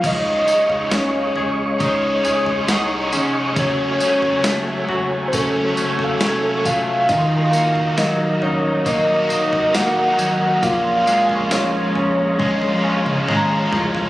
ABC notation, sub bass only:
X:1
M:4/4
L:1/16
Q:1/4=68
K:Db
V:1 name="Sub bass" clef=bass
D,,2 z D,, D,,2 D,,2 D,,2 D,,2 C,,2 F,,,2 | G,,,2 z G,,, G,,,2 G,,,2 G,,,2 G,,,2 F,,,2 F,,,2 | E,,,2 z E,,, E,,,2 E,,,2 E,,,2 E,,,2 E,,,2 A,,,2 | B,,,2 z B,,, B,,,2 B,,,2 B,,,2 B,,,2 A,,,2 C,,2 |]